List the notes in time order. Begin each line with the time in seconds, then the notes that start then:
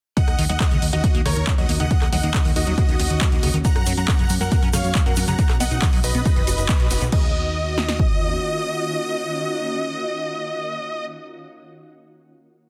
0.17 C#3 D#3 A#3 C#4 D#4 F#4 D#5 F#5, kick, closed hi-hat
0.28 D#2, cross-stick, closed hi-hat
0.39 D#2 D#3, open hi-hat
0.49 D#2 F#3 D#5 F#5, closed hi-hat
0.60 A#3, kick, cross-stick, clap, closed hi-hat
0.71 D#2 C#3, closed hi-hat
0.82 D#2, open hi-hat
0.93 D#2 D#3 F#4 D#5, closed hi-hat
1.04 F#3, kick, closed hi-hat
1.15 D#2 A#3, closed hi-hat
1.25 D#2 C#3 A#4 C#5, cross-stick, open hi-hat
1.36 D#2, closed hi-hat
1.47 D#3, kick, clap, closed hi-hat
1.58 D#2 F#3 F#4 D#5, closed hi-hat
1.69 D#2 A#3, open hi-hat
1.80 D#2 C#3 D#5 F#5, closed hi-hat
1.91 D#3, kick, closed hi-hat
2.02 D#2, cross-stick, clap, closed hi-hat
2.12 D#2 F#3 D#5 F#5, open hi-hat
2.23 D#2 A#3, closed hi-hat
2.34 C#3, kick, cross-stick, clap, closed hi-hat
2.45 D#2 D#3, open hi-hat
2.56 D#2 F#4 D#5, open hi-hat
2.67 D#2 F#3, closed hi-hat
2.78 A#3, kick, closed hi-hat
2.89 D#2 C#3, closed hi-hat
3.00 D#2 D#3, open hi-hat
3.10 D#2, closed hi-hat
3.21 F#3, kick, clap, closed hi-hat
3.32 D#2 A#3, closed hi-hat
3.43 D#2 C#3, open hi-hat
3.54 D#2 D#3, closed hi-hat
3.65 C#3 F#5 A#5, kick, closed hi-hat, shaker
3.75 F#2, cross-stick, closed hi-hat
3.86 F#2 F#3, open hi-hat, shaker
3.97 F#2 A#3 F#5 A#5, closed hi-hat, shaker
4.08 C#4, kick, cross-stick, clap, closed hi-hat, shaker
4.19 F#2 C#3, closed hi-hat
4.30 F#2, open hi-hat, shaker
4.41 F#2 F#3 A#4 F#5, closed hi-hat, shaker
4.52 A#3, kick, closed hi-hat, shaker
4.62 F#2 C#4, closed hi-hat
4.73 F#2 C#3 C#5 F5, cross-stick, open hi-hat, shaker
4.84 F#2, closed hi-hat, shaker
4.95 F#3, kick, clap, closed hi-hat, shaker
5.06 F#2 A#3 A#4 F#5, closed hi-hat
5.16 F#2 C#4, open hi-hat, shaker
5.28 F#2 C#3 F#5 A#5, closed hi-hat, shaker
5.38 F#3 B3 D#4, kick, closed hi-hat, shaker
5.49 B1, cross-stick, clap, closed hi-hat
5.60 B1 B3 D#5 F#5, open hi-hat, shaker
5.71 B1 D#4, closed hi-hat, shaker
5.82 D#3, kick, cross-stick, clap, closed hi-hat, shaker
5.93 B1 F#3, open hi-hat
6.04 B1 B4 D#5, open hi-hat, shaker
6.15 B1 B3, closed hi-hat, shaker
6.26 D#4, kick, closed hi-hat, shaker
6.36 F#1 D#3, closed hi-hat
6.47 F#1 F#4, open hi-hat, shaker
6.58 F#1, closed hi-hat, shaker
6.69 B3, kick, clap, closed hi-hat, shaker
6.80 B1 F#4, closed hi-hat
6.91 F#1 B3, open hi-hat, shaker
7.01 B1 B3, closed hi-hat, shaker
7.12 D#2 C#3 D#3 A#3 C#4 F4 F#4 D#5, kick, crash
7.78 snare
7.89 snare
7.99 kick